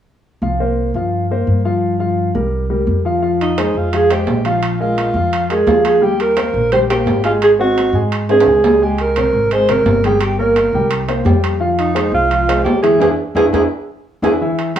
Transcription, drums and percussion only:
3.41 high timbale medium
3.58 high timbale medium
3.58 low timbale medium
3.93 high timbale medium
4.10 high timbale medium
4.27 low timbale medium
4.45 high timbale medium
4.63 high timbale medium
4.98 high timbale medium
4.98 low timbale medium
5.33 high timbale medium
5.50 high timbale medium
5.67 low timbale medium
5.85 high timbale medium
6.20 high timbale medium
6.37 high timbale medium
6.37 low timbale medium
6.72 high timbale medium
6.90 high timbale medium
7.07 low timbale medium
7.24 high timbale medium
7.42 high timbale medium
7.78 high timbale medium
7.78 low timbale medium
8.12 high timbale medium
8.29 high timbale medium
8.40 high timbale loud
8.64 low timbale medium
8.98 high timbale medium
9.16 high timbale medium
9.16 low timbale medium
9.51 high timbale medium
9.69 high timbale medium
9.86 low timbale medium
10.04 high timbale medium
10.21 high timbale medium
10.56 high timbale medium
10.56 low timbale medium
10.91 high timbale medium
11.09 high timbale medium
11.26 low timbale medium
11.44 high timbale medium
11.79 high timbale medium
11.96 high timbale medium
11.96 low timbale medium
12.31 high timbale medium
12.49 high timbale medium
12.66 low timbale medium
12.84 high timbale medium
13.02 high timbale medium
13.37 high timbale medium
13.54 high timbale medium
14.24 high timbale medium
14.59 high timbale medium
14.76 high timbale medium
14.76 low timbale medium

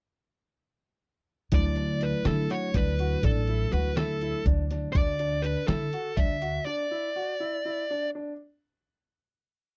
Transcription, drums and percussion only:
1.52 kick medium
1.52 closed hi-hat medium
1.76 closed hi-hat medium
2.01 closed hi-hat soft
2.25 snare medium
2.25 closed hi-hat medium
2.50 snare soft
2.50 closed hi-hat soft
2.74 kick medium
2.74 closed hi-hat medium
2.99 closed hi-hat medium
3.23 kick medium
3.23 closed hi-hat medium
3.48 closed hi-hat soft
3.72 closed hi-hat soft
3.97 snare medium
3.97 closed hi-hat medium
4.21 closed hi-hat soft
4.46 kick medium
4.46 closed hi-hat medium
4.71 snare soft
4.71 closed hi-hat soft
4.95 kick medium
4.95 closed hi-hat medium
5.19 closed hi-hat medium
5.44 closed hi-hat soft
5.68 snare medium
5.68 closed hi-hat medium
5.93 closed hi-hat soft
6.17 kick medium
6.17 closed hi-hat medium
6.42 closed hi-hat medium

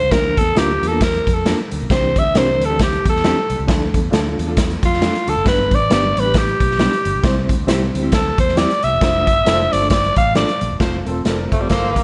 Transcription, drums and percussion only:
0.11 kick loud
0.11 snare loud
0.11 closed hi-hat medium
0.37 kick medium
0.37 closed hi-hat medium
0.56 snare loud
0.56 closed hi-hat medium
0.83 closed hi-hat medium
1.01 kick medium
1.01 snare loud
1.01 closed hi-hat medium
1.14 closed hi-hat soft
1.27 kick medium
1.27 closed hi-hat medium
1.46 snare medium
1.46 closed hi-hat medium
1.71 closed hi-hat medium
1.90 kick loud
1.90 snare loud
1.90 closed hi-hat medium
2.16 kick medium
2.16 closed hi-hat medium
2.35 snare loud
2.35 closed hi-hat medium
2.61 closed hi-hat medium
2.79 kick medium
2.79 snare loud
2.79 closed hi-hat loud
2.93 closed hi-hat soft
3.05 kick medium
3.05 closed hi-hat medium
3.16 snare soft
3.24 snare loud
3.24 closed hi-hat medium
3.50 closed hi-hat medium
3.68 kick loud
3.68 snare loud
3.68 closed hi-hat medium
3.94 kick medium
3.94 closed hi-hat medium
4.13 snare loud
4.13 closed hi-hat medium
4.39 closed hi-hat medium
4.57 kick medium
4.57 snare loud
4.57 closed hi-hat medium
4.70 closed hi-hat soft
4.83 kick medium
4.83 closed hi-hat medium
4.93 snare soft
5.02 snare loud
5.02 closed hi-hat medium
5.15 closed hi-hat soft
5.28 closed hi-hat medium
5.46 kick loud
5.46 snare loud
5.46 closed hi-hat medium
5.71 kick medium
5.71 closed hi-hat medium
5.90 snare loud
5.90 closed hi-hat medium
6.17 closed hi-hat medium
6.34 kick medium
6.34 snare loud
6.34 closed hi-hat medium
6.47 closed hi-hat soft
6.60 kick medium
6.60 closed hi-hat medium
6.71 snare soft
6.79 snare loud
6.79 closed hi-hat medium
6.93 closed hi-hat soft
7.05 closed hi-hat medium
7.24 kick loud
7.24 snare loud
7.24 closed hi-hat medium
7.49 kick medium
7.49 closed hi-hat medium
7.68 snare loud
7.68 closed hi-hat loud
7.95 closed hi-hat medium
8.12 kick medium
8.12 snare loud
8.12 closed hi-hat loud
8.38 kick medium
8.38 closed hi-hat medium
8.49 snare soft
8.57 snare loud
8.57 closed hi-hat medium
8.70 closed hi-hat soft
8.83 closed hi-hat medium
9.01 kick loud
9.01 snare loud
9.01 closed hi-hat medium
9.27 kick medium
9.27 closed hi-hat medium
9.46 snare loud
9.46 closed hi-hat medium
9.73 closed hi-hat medium
9.90 kick medium
9.90 snare loud
9.90 closed hi-hat loud
10.04 closed hi-hat soft
10.16 kick medium
10.16 closed hi-hat medium
10.35 snare loud
10.35 closed hi-hat medium
10.49 closed hi-hat soft
10.61 closed hi-hat medium
10.80 kick medium
10.80 snare loud
10.80 closed hi-hat medium
11.06 closed hi-hat medium
11.25 snare medium
11.25 closed hi-hat medium
11.52 kick medium
11.52 closed hi-hat medium
11.69 kick medium
11.69 snare loud
11.69 closed hi-hat medium
11.96 kick medium
11.96 closed hi-hat medium

